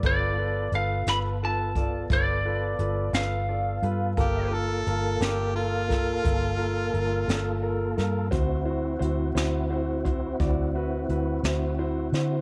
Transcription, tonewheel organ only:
\new Staff \with { instrumentName = "Tonewheel organ" } { \time 12/8 \key g \major \tempo 4. = 58 <b f' a'>1. | <bes f' a'>1. | <c' e' fis'>1. | }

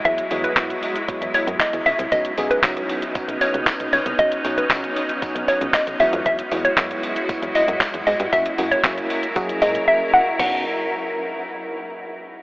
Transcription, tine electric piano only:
\new Staff \with { instrumentName = "Tine electric piano" } { \time 4/4 \key b \major \tempo 4 = 116 <fis gis b e' fis'>8 <fis gis b e' fis'>8 <fis gis b e' fis'>8. r16 <fis gis b e' fis'>4. r8 | <fis b cis' dis' fis'>8 <fis b cis' dis' gis'>8 <fis b cis' dis' fis'>8. r16 <fis b cis' dis' fis'>4. r8 | <fis b cis' dis' fis'>8 <fis b cis' dis' fis'>8 <fis b cis' dis' fis'>8. r16 <fis b cis' dis' fis'>4. <fis gis b e' fis'>8~ | <fis gis b e' fis'>8 <fis gis b e' fis'>8 <fis gis b e' fis'>8. r16 <fis gis b e' fis'>4. r8 |
<fis ais cis' e' fis'>8 <fis ais cis' e' fis'>8 <fis ais cis' e' fis'>8. r16 <fis ais cis' e' gis'>4. r8 | <b cis' dis' fis'>8 r2. r8 | }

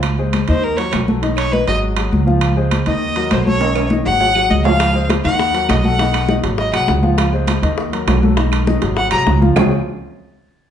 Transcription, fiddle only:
\new Staff \with { instrumentName = "Fiddle" } { \time 4/4 \key des \major \tempo 4 = 202 r4. c''8 bes'8 des''8 r4 | r8 des''8 ces''8 ees''8 r2 | r4. ees''4. c''8 des''8~ | des''4 r8 ges''4. ees''8 f''8~ |
f''4 r8 ges''4. ees''8 ges''8~ | ges''4 r4 ees''8 ges''8 r4 | r1 | r2 ges''8 bes''8 r4 |
r1 | }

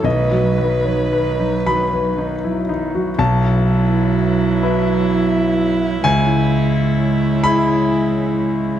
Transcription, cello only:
\new Staff \with { instrumentName = "Cello" } { \clef bass \time 6/8 \key b \mixolydian \tempo 4. = 42 dis16 fis16 dis16 fis16 dis16 fis16 dis16 fis16 dis16 fis16 dis16 fis16 | fis2. | gis2. | }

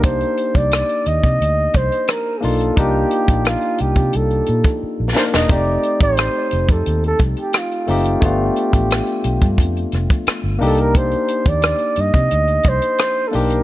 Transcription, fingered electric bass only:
\new Staff \with { instrumentName = "Fingered electric bass" } { \clef bass \time 4/4 \key c \dorian \tempo 4 = 88 c,8 r16 c,8 r16 ees,16 c16 d,8 c,16 r8. b,,8 | c,8 r16 bes,,8 r16 c,16 c16 c,8 bes,16 r8 bes,,16 r16 e,,16 | f,,8 r16 a,,8 r16 f,,16 f,16 ees,8 c,16 r8. fis,,8 | g,,8 r16 a,,8 r16 b,,16 g,16 f,8 f,,16 r8 g,,16 c,8~ |
c,8 r16 ees,8 r16 g,16 c16 d,8 c,16 r8. b,,8 | }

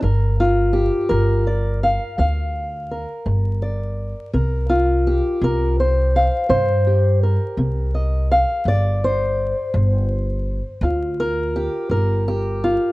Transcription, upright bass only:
\new Staff \with { instrumentName = "Upright bass" } { \clef bass \time 12/8 \key g \minor \tempo 4. = 56 g,,4. g,,4. d,4. g,,4. | c,4. c,4. g,4. c,4. | g,,4. g,,4. d,4. g,,4. | }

